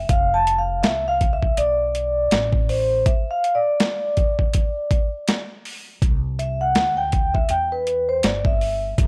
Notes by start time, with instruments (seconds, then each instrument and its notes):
Already playing: vibraphone E5
0.09 upright bass F1, vibraphone F5, kick, closed hi-hat
0.34 vibraphone A5
0.47 closed hi-hat
0.59 vibraphone F5
0.83 upright bass C2, vibraphone E5, snare, closed hi-hat
1.08 vibraphone F5
1.21 kick, closed hi-hat
1.33 vibraphone E5
1.43 kick
1.57 upright bass B1, vibraphone D5, closed hi-hat
1.95 closed hi-hat
2.31 upright bass A1, snare, closed hi-hat
2.53 kick
2.69 vibraphone C5, open hi-hat
3.06 vibraphone E5, kick, closed hi-hat
3.31 vibraphone F5
3.44 closed hi-hat
3.55 vibraphone D5
3.80 snare, closed hi-hat
4.17 kick, closed hi-hat
4.39 kick
4.54 kick, closed hi-hat
4.91 kick, closed hi-hat
5.28 snare, closed hi-hat
5.65 open hi-hat
6.02 upright bass C2, kick, closed hi-hat
6.39 vibraphone E5, closed hi-hat
6.61 vibraphone F#5
6.75 upright bass D2, snare, closed hi-hat
6.97 vibraphone G5
7.12 kick, closed hi-hat
7.34 vibraphone E5, kick
7.49 upright bass E2, vibraphone G5, closed hi-hat
7.72 vibraphone B4
7.87 closed hi-hat
8.09 vibraphone C5
8.23 upright bass G1, vibraphone D5, snare, closed hi-hat
8.45 vibraphone E5, kick
8.61 open hi-hat
8.98 upright bass F#1, kick, closed hi-hat